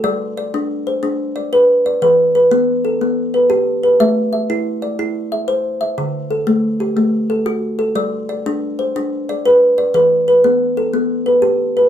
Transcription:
\new Staff \with { instrumentName = "Kalimba" } { \time 12/8 \key g \major \tempo 4. = 121 << { <a' d''>4 d''4. c''4. d''4. d''8 | b'4 b'4. a'4. b'4. b'8 | e''4 e''4. d''4. e''4. e''8~ | e''8 r8 a'4. g'4. a'4. a'8 |
d''4 d''4. c''4. d''4. d''8 | b'4 b'4. a'4. b'4. b'8 | } \\ { g4 r8 d'4 r8 d'4 r8 b'4 r8 | e4 r8 b4 r8 b4 r8 g'4 r8 | a4 r8 e'4 r8 e'4 r8 c''4 r8 | d4 r8 a4 r8 a4 r8 fis'4 r8 |
g4 r8 d'4 r8 d'4 r8 b'4 r8 | e4 r8 b4 r8 b4 r8 g'4 r8 | } >> }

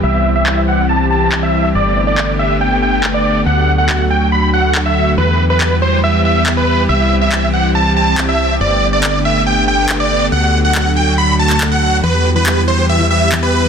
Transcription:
<<
  \new Staff \with { instrumentName = "Supersaw synth" } { \time 4/4 \key e \minor \tempo 4 = 140 e''8 r16 e''8 r16 fis''8 a''8 a''8 r16 e''8 r16 | d''8 r16 d''8 r16 e''8 g''8 g''8 r16 d''8 r16 | fis''8 r16 fis''8 r16 g''8 b''8 fis''8 r16 e''8 r16 | b'8 r16 b'8 r16 c''8 e''8 e''8 r16 b'8 r16 |
e''8 r16 e''8 r16 fis''8 a''8 a''8 r16 e''8 r16 | d''8 r16 d''8 r16 e''8 g''8 g''8 r16 d''8 r16 | fis''8 r16 fis''8 r16 g''8 b''8 a''8 r16 fis''8 r16 | b'8 r16 b'8 r16 c''8 e''8 e''8 r16 b'8 r16 | }
  \new Staff \with { instrumentName = "Synth pluck" } { \time 4/4 \key e \minor r1 | r1 | r1 | r1 |
r1 | r1 | r1 | e16 g'16 g'16 e16 g'16 g'16 e16 g'16 g'16 e16 g'16 g'16 e16 g'16 g'16 e16 | }
  \new Staff \with { instrumentName = "Analog synth pad" } { \time 4/4 \key e \minor <e g c' g'>8 <e g c' g'>16 <e g c' g'>8 <e g c' g'>16 <e g c' g'>8 <e g c' g'>16 <e g c' g'>16 <e g c' g'>8 <e g c' g'>8 <e g c' g'>8 | <d a b g'>8 <d a b g'>16 <d a b g'>8 <d a b g'>16 <d a b g'>8 <d a b g'>16 <d a b g'>16 <d a b g'>8 <d a b g'>8 <d a b g'>8 | <d fis a fis'>8 <d fis a fis'>16 <d fis a fis'>8 <d fis a fis'>16 <d fis a fis'>8 <d fis a fis'>16 <d fis a fis'>16 <d fis a fis'>8 <d fis a fis'>8 <d fis a fis'>8 | <e g b g'>8 <e g b g'>16 <e g b g'>8 <e g b g'>16 <e g b g'>8 <e g b g'>16 <e g b g'>16 <e g b g'>8 <e g b g'>8 <e g b g'>8 |
<e g c' g'>8 <e g c' g'>16 <e g c' g'>8 <e g c' g'>16 <e g c' g'>8 <e g c' g'>16 <e g c' g'>16 <e g c' g'>8 <e g c' g'>8 <e g c' g'>8 | <d a b g'>8 <d a b g'>16 <d a b g'>8 <d a b g'>16 <d a b g'>8 <d a b g'>16 <d a b g'>16 <d a b g'>8 <d a b g'>8 <d a b g'>8 | <d fis a fis'>8 <d fis a fis'>16 <d fis a fis'>8 <d fis a fis'>16 <d fis a fis'>8 <d fis a fis'>16 <d fis a fis'>16 <d fis a fis'>8 <d fis a fis'>8 <d fis a fis'>8 | <e g b g'>8 <e g b g'>16 <e g b g'>8 <e g b g'>16 <e g b g'>8 <e g b g'>16 <e g b g'>16 <e g b g'>8 <e g b g'>8 <e g b g'>8 | }
  \new Staff \with { instrumentName = "FM bass" } { \clef bass \time 4/4 \key e \minor c,1 | g,,1 | d,1 | e,1 |
c,1 | g,,1 | d,1 | e,1 | }
  \new DrumStaff \with { instrumentName = "Drums" } \drummode { \time 4/4 r4 hc4 r4 hc4 | r4 hc4 r4 hc4 | r4 hc4 r4 hc4 | r4 hc4 r4 hc4 |
r4 hc4 r4 hc4 | r4 hc4 r4 hc4 | r4 hc4 r8. hc16 hc4 | r4 hc4 r4 hc4 | }
>>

